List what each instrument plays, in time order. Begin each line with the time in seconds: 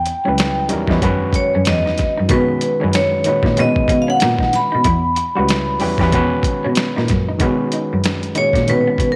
Already playing: vibraphone G5
0.06 muted clean electric guitar stroke, closed hi-hat
0.25 cello C#2, reed electric piano F#3 G3 C#4 E4 B4, clean electric guitar C#4
0.38 muted clean electric guitar stroke, snare, closed hi-hat
0.69 cello E2, reed electric piano G3 C#4 E4 F#4 A#4, clean electric guitar D#4, closed hi-hat
0.87 cello E2, reed electric piano G3 C#4 E4 F#4, clean electric guitar D#4, kick, snare
0.92 reed electric piano B4
1.01 cello F#2, reed electric piano D#3 G#3 C#4 F#4 B4, clean electric guitar B3, kick, closed hi-hat
1.33 cello F#2, vibraphone C#5, muted clean electric guitar stroke, kick, closed hi-hat
1.55 cello F#2, clean electric guitar C#4
1.65 cello E2, vibraphone D#5, snare, closed hi-hat
1.86 clean electric guitar D#4, snare
1.98 muted clean electric guitar stroke, kick, snare, closed hi-hat
2.18 cello F#2, clean electric guitar D#4
2.29 cello B2, reed electric piano D#3 G#3 C#4 F#4 B4, clean electric guitar B3, vibraphone B4, kick, closed hi-hat
2.61 muted clean electric guitar stroke, closed hi-hat
2.80 cello F#2, reed electric piano D#3 G#3 C#4 F#4 B4, clean electric guitar C#4
2.93 vibraphone C#5, muted clean electric guitar stroke, snare, closed hi-hat
3.24 cello A#2, reed electric piano D#3 G#3 C#4 F#4 B4, clean electric guitar D#4, closed hi-hat
3.43 cello A#2, clean electric guitar D#4, kick, snare
3.56 cello B2, reed electric piano D#3 G#3 C#4 F#4 B4, clean electric guitar B3, vibraphone D#5, closed hi-hat
3.76 kick
3.88 cello B2, muted clean electric guitar stroke, kick, closed hi-hat
4.02 vibraphone F5
4.08 clean electric guitar C#4, vibraphone F#5
4.20 cello A#2, snare, closed hi-hat
4.39 clean electric guitar D#4, kick
4.43 snare
4.53 vibraphone B5, muted clean electric guitar stroke, snare, closed hi-hat
4.72 cello B2, clean electric guitar D#4
4.84 cello E2, clean electric guitar E4, kick, closed hi-hat
5.16 muted clean electric guitar stroke, closed hi-hat
5.35 cello C#2, reed electric piano G3 C#4 E4 F#4 B4, clean electric guitar F#4
5.49 muted clean electric guitar stroke, snare, closed hi-hat
5.80 cello E2, reed electric piano G3 C#4 E4 F#4 B4, clean electric guitar G4, open hi-hat
5.98 cello E2, reed electric piano G3 C#4 E4 F#4, clean electric guitar G4, kick, snare
6.03 reed electric piano B4
6.11 cello B2, reed electric piano D#3 G#3 C#4 F#4 B4, clean electric guitar B3, kick, closed hi-hat
6.43 cello B2, muted clean electric guitar stroke, kick, closed hi-hat
6.64 cello B2, clean electric guitar C#4
6.75 snare, closed hi-hat
6.96 cello A#2, clean electric guitar D#4, snare
7.08 cello F#2, muted clean electric guitar stroke, kick, snare, closed hi-hat
7.29 clean electric guitar D#4
7.39 cello B2, reed electric piano D#3 G#3 C#4 F#4 B4, clean electric guitar C#4, kick, closed hi-hat
7.72 clean electric guitar D#4, closed hi-hat
7.93 cello F#2
8.04 snare, closed hi-hat
8.23 closed hi-hat
8.35 cello A#2, reed electric piano D#3 G#3 C#4 F#4 G#4, clean electric guitar D#4, vibraphone C#5, closed hi-hat
8.53 cello A#2, kick, snare, closed hi-hat
8.67 cello B2, reed electric piano D#3 G#3 C#4 F#4 B4, vibraphone B4, closed hi-hat
8.87 clean electric guitar B3
8.98 cello B2, muted clean electric guitar stroke, kick, closed hi-hat
9.12 vibraphone A#4